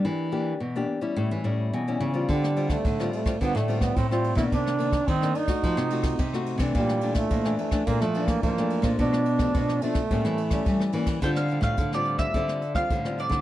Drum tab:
RD |----------------|x-xxx-xxx-xxx-xx|x-xxx-xxx-xxx-xx|x-xxx-xxx-xxx-xx|
HH |----------------|----------------|----------------|----------------|
SD |----------------|-r-r-r-r-r-r-r-r|-r-r-r-r-r-r-r-r|-r-r-r-r-r-r-r-r|
BD |----------------|o--oo--oo--oo--o|o--oo--oo--oo--o|o--oo--oo--oo--o|

RD |x-xxx-xxx-xxx-xx|----------------|
HH |----------------|xxxxxxxxxxx-x-xx|
SD |-r-r-r-r-r-r-r-r|-r-r-r-r-r-r-r-r|
BD |o--oo--oo--oo--o|o--oo--oo--oo--o|